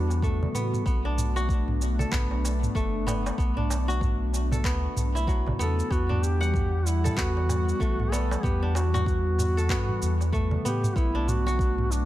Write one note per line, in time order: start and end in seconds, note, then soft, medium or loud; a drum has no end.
0.00 0.47 E2 medium
0.00 0.82 E3 medium
0.00 0.82 G3 medium
0.00 0.54 B3 loud
0.00 5.87 B3 medium
0.00 0.20 D4 medium
0.00 0.49 D4 medium
0.00 0.30 F#4 medium
0.00 0.82 F#4 medium
0.00 0.79 A4 medium
0.10 darbuka tek soft
0.10 shaker soft
0.22 2.23 A3 medium
0.22 kick loud
0.22 mid tom medium
0.22 shaker soft
0.43 darbuka dum medium
0.54 0.77 A2 medium
0.54 0.86 B3 medium
0.54 shaker medium
0.73 mid tom medium
0.73 shaker soft
0.85 2.05 B1 loud
0.85 5.87 A3 medium
0.85 2.11 B3 medium
0.85 5.87 D4 medium
0.85 kick loud
0.85 shaker soft
1.05 2.73 D4 medium
1.18 mid tom medium
1.18 shaker medium
1.36 2.82 F#4 medium
1.36 darbuka ka soft
1.36 shaker soft
1.49 kick loud
1.49 shaker soft
1.68 mid tom medium
1.82 darbuka ka soft
1.82 shaker medium
1.99 3.31 A4 medium
1.99 darbuka dum medium
1.99 shaker soft
2.12 2.68 B1 medium
2.12 3.06 B3 medium
2.12 kick loud
2.12 clap medium
2.12 mid tom medium
2.12 shaker soft
2.31 darbuka ka medium
2.45 darbuka ka soft
2.45 darbuka tek medium
2.45 shaker medium
2.63 mid tom medium
2.63 shaker soft
2.75 3.31 F#1 medium
2.75 4.75 A3 medium
2.75 kick loud
2.75 shaker soft
3.07 3.38 B3 medium
3.07 mid tom medium
3.07 darbuka tek medium
3.07 shaker medium
3.26 darbuka tek medium
3.26 shaker soft
3.38 4.66 B1 medium
3.38 4.65 B3 medium
3.38 kick loud
3.38 shaker soft
3.57 5.25 D4 medium
3.57 mid tom medium
3.70 darbuka tek medium
3.70 shaker medium
3.88 5.34 F#4 medium
3.88 darbuka ka soft
3.88 shaker soft
4.01 kick loud
4.01 mid tom medium
4.01 shaker soft
4.33 darbuka ka soft
4.33 darbuka tek soft
4.33 shaker medium
4.52 5.84 A4 medium
4.52 mid tom medium
4.52 darbuka dum medium
4.52 shaker soft
4.64 4.87 D2 medium
4.64 5.59 B3 loud
4.64 kick loud
4.64 clap medium
4.64 shaker soft
4.96 5.53 B1 medium
4.96 mid tom medium
4.96 shaker medium
5.15 6.72 E4 medium
5.15 darbuka tek soft
5.15 shaker soft
5.27 5.96 F#3 medium
5.27 kick loud
5.27 shaker soft
5.47 mid tom medium
5.47 darbuka tek soft
5.47 darbuka dum loud
5.59 5.82 E2 medium
5.59 5.90 B3 medium
5.59 5.93 A4 loud
5.59 shaker medium
5.79 shaker soft
5.91 7.10 E2 medium
5.91 10.92 E3 medium
5.91 10.92 G3 loud
5.91 7.16 B3 medium
5.91 12.05 B3 medium
5.91 6.25 F#4 loud
5.91 10.92 F#5 medium
5.91 kick loud
5.91 shaker soft
6.09 7.77 D4 medium
6.09 mid tom medium
6.24 6.88 G4 loud
6.24 shaker medium
6.41 7.37 F#5 medium
6.41 darbuka ka soft
6.41 shaker soft
6.54 kick loud
6.54 mid tom medium
6.54 shaker soft
6.86 7.20 E4 medium
6.86 darbuka ka soft
6.86 shaker medium
7.04 8.36 A4 medium
7.04 mid tom medium
7.04 darbuka dum medium
7.04 shaker soft
7.17 7.73 E2 medium
7.17 8.12 B3 medium
7.17 8.14 F#4 loud
7.17 kick loud
7.17 clap medium
7.17 shaker soft
7.37 darbuka ka medium
7.49 mid tom medium
7.49 darbuka ka medium
7.49 darbuka tek medium
7.49 shaker medium
7.69 shaker soft
7.80 8.36 B1 medium
7.80 9.80 A3 medium
7.80 kick medium
7.80 shaker soft
8.00 mid tom medium
8.12 8.43 B3 medium
8.12 8.45 A4 loud
8.12 darbuka tek medium
8.12 shaker medium
8.31 darbuka tek medium
8.31 shaker soft
8.43 9.71 E2 loud
8.43 9.70 B3 medium
8.43 8.74 G4 loud
8.43 kick loud
8.43 mid tom medium
8.43 shaker soft
8.62 10.30 D4 medium
8.75 9.05 F#4 medium
8.75 darbuka tek medium
8.75 shaker medium
8.94 10.40 F#4 medium
8.94 mid tom medium
8.94 darbuka ka medium
8.94 shaker soft
9.06 10.35 F#4 loud
9.06 kick loud
9.06 shaker soft
9.38 mid tom medium
9.38 darbuka ka soft
9.38 darbuka tek soft
9.38 shaker medium
9.57 10.89 A4 medium
9.57 shaker soft
9.69 9.92 G2 medium
9.69 10.65 B3 loud
9.69 kick loud
9.69 clap medium
9.69 shaker soft
9.89 mid tom medium
10.02 10.58 E2 medium
10.02 shaker medium
10.21 darbuka tek soft
10.21 shaker soft
10.33 12.05 A3 medium
10.33 kick medium
10.33 mid tom medium
10.33 shaker soft
10.51 darbuka dum medium
10.65 10.88 A2 medium
10.65 10.96 B3 medium
10.65 10.98 G4 loud
10.65 shaker medium
10.84 mid tom medium
10.84 shaker soft
10.96 12.05 B1 loud
10.96 12.05 D3 medium
10.96 12.05 A3 medium
10.96 12.05 B3 medium
10.96 11.30 E4 loud
10.96 kick loud
10.96 shaker soft
11.15 12.05 D4 medium
11.28 11.93 F#4 loud
11.28 mid tom medium
11.28 shaker medium
11.47 12.05 F#4 loud
11.47 darbuka ka soft
11.47 shaker soft
11.59 kick loud
11.59 shaker soft
11.78 mid tom medium
11.91 12.05 D4 medium
11.91 darbuka ka soft
11.91 shaker medium